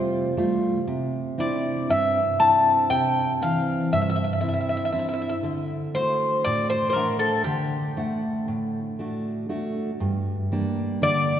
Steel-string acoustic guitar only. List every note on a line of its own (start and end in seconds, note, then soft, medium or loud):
0.00 0.34 C3 medium
0.00 0.36 G3 soft
0.00 0.36 A3 soft
0.00 0.37 F4 medium
0.37 0.77 G3 medium
0.37 0.77 A3 soft
0.37 0.78 F4 medium
0.87 1.86 C3 medium
1.38 2.19 C4 soft
1.38 2.19 D4 soft
1.38 2.19 E4 medium
1.89 2.87 G2 medium
2.40 3.21 C4 medium
2.40 3.21 D4 soft
2.40 3.21 E4 soft
2.90 3.88 C3 medium
3.41 4.23 E3 medium
3.41 4.22 C4 medium
3.41 4.22 D4 soft
3.92 4.90 G2 medium
4.42 4.92 C4 soft
4.42 4.92 D4 soft
4.42 4.93 E4 soft
4.93 5.33 C4 soft
4.93 5.34 D4 soft
4.93 5.34 E4 medium
5.43 6.42 D3 medium
5.94 6.75 A3 soft
5.94 6.76 D4 soft
5.94 6.76 F#4 medium
6.46 7.44 A2 medium
6.95 7.76 A3 medium
6.95 7.77 D4 soft
6.95 7.77 F#5 medium
7.46 8.45 D3 medium
7.97 8.78 A3 medium
7.97 8.78 D4 soft
7.97 8.79 F#5 medium
8.48 9.46 A2 medium
8.99 9.48 A3 soft
8.99 9.48 D4 soft
8.99 9.49 F#4 medium
9.49 9.90 A3 soft
9.49 9.90 D4 soft
9.49 9.90 F#4 soft
10.00 10.98 G2 medium
10.52 11.32 G3 soft
10.52 11.33 A#3 soft
10.52 11.33 D4 soft
11.02 11.40 D3 medium